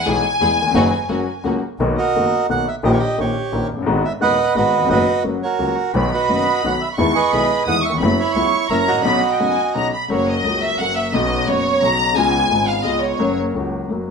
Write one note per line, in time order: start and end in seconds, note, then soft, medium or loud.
0.06 0.21 B1 medium
0.06 0.21 B2 soft
0.06 0.21 E3 soft
0.06 0.21 G#3 soft
0.06 0.21 B3 soft
0.06 0.20 E4 soft
0.06 0.21 G#4 medium
0.06 0.21 G#4 soft
0.06 1.45 G#5 loud
0.40 0.55 E2 medium
0.40 0.56 E3 soft
0.40 0.55 G#3 soft
0.40 0.55 B3 medium
0.40 0.56 B3 soft
0.40 0.55 E4 soft
0.40 0.55 G#4 medium
0.40 0.56 G#4 soft
0.62 0.67 D#2 soft
0.66 0.71 E2 medium
0.71 0.75 F2 medium
0.71 0.90 F#2 medium
0.71 0.90 F#3 medium
0.75 0.90 F#1 loud
0.75 0.90 D#3 medium
0.75 0.90 B3 medium
0.75 0.90 D#4 medium
0.75 0.90 F#4 medium
1.09 1.25 F#1 medium
1.09 1.24 F#2 medium
1.09 1.24 C#3 soft
1.09 1.24 F#3 soft
1.09 1.24 A#3 soft
1.09 1.24 C#4 soft
1.09 1.24 F#4 medium
1.44 1.59 C#2 soft
1.44 1.60 C#2 medium
1.44 1.60 C#3 medium
1.44 1.59 F#3 soft
1.44 1.60 A#3 soft
1.44 1.60 C#4 soft
1.44 1.60 F#4 soft
1.79 1.94 B1 medium
1.79 1.95 B1 medium
1.79 1.95 B2 medium
1.79 1.95 D#3 medium
1.79 1.95 A#3 medium
1.79 1.95 B3 medium
1.79 1.95 F#4 medium
1.98 2.47 F#4 medium
1.98 2.47 A#4 medium
1.98 2.46 D#5 medium
2.15 2.29 F#1 soft
2.15 2.30 F#1 soft
2.15 2.30 F#2 soft
2.15 2.30 D#3 soft
2.15 2.30 A#3 soft
2.15 2.30 B3 soft
2.15 2.30 F#4 soft
2.49 2.64 B1 soft
2.49 2.64 B2 soft
2.49 2.64 D#3 soft
2.49 2.64 A#3 soft
2.49 2.64 B3 soft
2.49 2.64 F#4 soft
2.49 2.68 F#5 medium
2.68 2.76 E5 medium
2.83 2.99 A#1 medium
2.83 2.98 A#2 medium
2.83 2.98 D#3 medium
2.83 2.98 A#3 medium
2.83 2.98 C#4 medium
2.83 2.99 G4 medium
2.83 3.19 G4 medium
2.83 2.92 D#5 medium
2.92 2.99 C#5 medium
2.99 3.20 D#5 medium
3.18 3.33 A#1 soft
3.18 3.34 A#1 soft
3.18 3.33 A#2 soft
3.18 3.33 D#3 soft
3.18 3.33 A#3 soft
3.18 3.33 C#4 soft
3.18 3.33 G4 soft
3.18 3.68 G4 soft
3.18 3.68 C#5 medium
3.52 3.67 A#1 soft
3.52 3.68 A#1 medium
3.52 3.67 A#2 soft
3.52 3.67 D#3 soft
3.52 3.67 A#3 soft
3.52 3.67 C#4 soft
3.52 3.67 G4 soft
3.71 3.79 F1 soft
3.71 3.86 F#1 medium
3.78 3.83 F#1 medium
3.82 3.87 G1 medium
3.82 4.01 D#3 medium
3.86 4.02 G#1 medium
3.86 4.01 G#2 medium
3.86 4.01 G#3 medium
3.86 4.01 B3 medium
3.86 4.02 F#4 medium
4.05 4.13 E5 medium
4.21 4.36 D#1 soft
4.21 4.36 D#2 medium
4.21 4.36 D#2 soft
4.21 4.36 D#3 soft
4.21 4.36 G#3 soft
4.21 4.36 B3 soft
4.21 4.36 F#4 soft
4.21 4.56 B4 medium
4.21 4.54 D#5 medium
4.21 4.54 F#5 medium
4.55 4.71 G#1 soft
4.55 4.71 G#2 soft
4.55 4.70 D#3 soft
4.55 4.70 G#3 soft
4.55 4.70 B3 soft
4.55 4.71 F#4 soft
4.55 4.89 F#4 medium
4.55 4.89 B4 medium
4.55 4.88 D#5 medium
4.77 4.82 D#2 soft
4.77 4.86 E2 medium
4.85 4.90 F2 medium
4.89 5.05 F#1 medium
4.89 5.04 F#2 medium
4.89 5.04 D#3 medium
4.89 5.04 F#3 medium
4.89 5.04 B3 medium
4.89 5.04 F#4 medium
4.89 5.23 F#4 medium
4.89 5.23 B4 medium
4.89 5.22 D#5 medium
5.24 5.39 F#1 soft
5.24 5.39 F#2 soft
5.24 5.39 C#3 soft
5.24 5.39 F#3 soft
5.24 5.39 A#3 soft
5.24 5.39 F#4 soft
5.43 5.92 F#4 soft
5.43 5.92 A#4 soft
5.43 5.75 C#5 medium
5.59 5.74 C#2 soft
5.59 5.75 C#2 medium
5.59 5.74 C#3 soft
5.59 5.74 F#3 soft
5.59 5.74 A#3 soft
5.59 5.74 F#4 soft
5.94 6.09 B1 medium
5.94 6.09 B2 medium
5.94 6.09 D#3 medium
5.94 6.09 F#3 medium
5.94 6.09 B3 medium
5.94 6.09 F#4 medium
5.94 6.94 B5 medium
6.13 6.61 F#4 medium
6.13 6.61 B4 medium
6.13 6.66 D#5 medium
6.29 6.44 F#1 soft
6.29 6.44 F#2 soft
6.29 6.43 D#3 soft
6.29 6.44 F#3 soft
6.29 6.44 B3 soft
6.29 6.44 F#4 soft
6.64 6.78 B1 soft
6.64 6.78 B2 soft
6.64 6.78 D#3 soft
6.64 6.78 F#3 soft
6.64 6.78 B3 soft
6.64 6.78 F#4 soft
6.64 6.73 F#5 medium
6.81 6.89 E5 medium
6.98 7.12 E2 medium
6.98 7.13 E2 medium
6.98 7.12 D#3 medium
6.98 7.13 E3 medium
6.98 7.12 G#3 soft
6.98 7.13 B3 medium
6.98 7.13 E4 medium
6.98 7.32 C#6 medium
7.15 7.63 G#4 medium
7.15 7.63 B4 medium
7.15 7.64 D#5 medium
7.31 7.47 B1 soft
7.31 7.47 B2 soft
7.31 7.47 D#3 soft
7.31 7.47 G#3 soft
7.31 7.47 B3 soft
7.31 7.47 E4 soft
7.31 7.66 B5 medium
7.66 7.81 E2 medium
7.66 7.82 E2 soft
7.66 7.82 D#3 soft
7.66 7.82 E3 soft
7.66 7.82 G#3 soft
7.66 7.82 B3 soft
7.66 7.82 E4 soft
7.66 7.75 F#5 medium
7.66 7.82 D#6 medium
7.83 7.92 E5 medium
7.83 8.00 C#6 medium
7.89 7.93 D#2 soft
7.89 7.97 E2 medium
7.97 8.15 F#1 loud
7.97 8.01 F2 medium
7.97 8.33 B5 medium
8.02 8.16 F#2 medium
8.02 8.16 C#3 medium
8.02 8.16 F#3 medium
8.02 8.16 B3 medium
8.02 8.17 E4 medium
8.19 8.67 E4 medium
8.19 8.67 C#5 medium
8.35 8.50 C#2 soft
8.35 8.50 C#3 soft
8.35 8.50 F#3 soft
8.35 8.50 B3 soft
8.35 8.50 E4 soft
8.35 8.70 C#6 medium
8.69 8.84 F#1 medium
8.69 8.85 F#2 medium
8.69 8.85 C#3 soft
8.69 8.85 F#3 medium
8.69 8.85 A#3 soft
8.69 8.85 E4 soft
8.69 9.02 A#4 medium
8.69 9.03 C#5 medium
8.69 8.78 E5 medium
8.69 9.04 A#5 medium
8.88 9.88 F#4 medium
8.88 9.88 D#5 medium
8.92 8.96 G#1 soft
8.97 9.01 A1 medium
9.02 9.05 A#1 medium
9.02 9.19 B1 medium
9.02 9.19 B2 medium
9.02 9.19 C#3 medium
9.02 9.20 F#3 medium
9.02 9.19 B3 medium
9.02 9.20 D#4 medium
9.02 9.30 B5 medium
9.32 9.39 G5 soft
9.39 9.54 F#1 soft
9.39 9.54 F#2 soft
9.39 9.54 C#3 soft
9.39 9.54 F#3 soft
9.39 9.54 B3 soft
9.39 9.55 D#4 soft
9.39 9.74 G#5 medium
9.75 9.89 B1 soft
9.75 9.89 B2 soft
9.75 9.89 C#3 soft
9.75 9.89 F#3 soft
9.75 9.89 B3 soft
9.75 9.90 D#4 soft
9.75 9.91 A#5 medium
9.94 10.09 B5 medium
10.08 10.42 F#1 medium
10.08 10.43 F#2 medium
10.08 10.42 C#3 soft
10.08 10.43 F#3 medium
10.08 10.43 A#3 soft
10.08 10.44 F#4 soft
10.08 10.27 C#5 medium
10.30 10.63 D#5 medium
10.43 10.77 C#2 soft
10.43 10.78 C#2 soft
10.43 10.77 C#3 soft
10.43 10.77 F#3 soft
10.43 10.78 A#3 soft
10.48 10.79 F#4 soft
10.63 10.79 E5 medium
10.78 11.12 F#1 medium
10.78 11.12 F#2 soft
10.78 11.10 C#3 soft
10.78 11.12 F#3 soft
10.78 11.13 A#3 soft
10.78 10.96 F#5 medium
10.83 11.13 F#4 soft
10.96 11.13 E5 medium
11.12 11.46 B1 medium
11.12 11.46 B2 medium
11.12 11.44 C#3 medium
11.12 11.45 F#3 soft
11.12 11.47 B3 soft
11.12 11.48 D#5 medium
11.16 11.47 F#4 medium
11.46 11.80 F#1 medium
11.46 11.80 F#1 soft
11.46 11.80 F#2 soft
11.46 11.79 C#3 soft
11.46 11.80 F#3 soft
11.46 11.81 B3 soft
11.46 11.81 F#4 soft
11.46 11.82 C#5 medium
11.81 12.15 B1 soft
11.81 12.15 B1 medium
11.81 12.15 B2 soft
11.81 12.12 C#3 soft
11.81 12.14 F#3 soft
11.81 12.15 B3 soft
11.81 12.16 F#4 soft
11.81 12.17 A#5 loud
12.13 12.49 C#2 medium
12.13 12.47 C#3 medium
12.13 12.48 G#3 soft
12.13 12.49 B3 soft
12.13 12.68 G#5 loud
12.18 12.50 F4 medium
12.49 12.83 G#1 medium
12.49 12.84 G#1 soft
12.49 12.84 G#2 soft
12.49 12.81 C#3 soft
12.49 12.82 G#3 soft
12.49 12.84 B3 soft
12.53 12.85 F4 soft
12.67 12.85 F5 medium
12.83 13.18 C#2 soft
12.83 13.18 C#2 medium
12.83 13.16 C#3 soft
12.83 13.17 G#3 soft
12.83 13.18 B3 soft
12.83 13.19 F4 soft
12.83 13.02 D#5 medium
13.01 13.37 C#5 medium
13.18 13.53 F#1 medium
13.18 13.53 F#2 medium
13.18 13.51 C#3 medium
13.18 13.53 F#3 medium
13.18 13.53 A#3 soft
13.22 13.54 F#4 medium
13.53 13.88 C#2 soft
13.53 13.86 C#3 soft
13.53 13.88 F#3 soft
13.53 13.88 A#3 soft
13.53 13.89 F#4 soft
13.88 14.11 F#1 medium
13.88 14.11 F#2 soft
13.88 14.11 C#3 soft
13.88 14.11 F#3 soft
13.88 14.11 A#3 soft
13.92 14.11 F#4 soft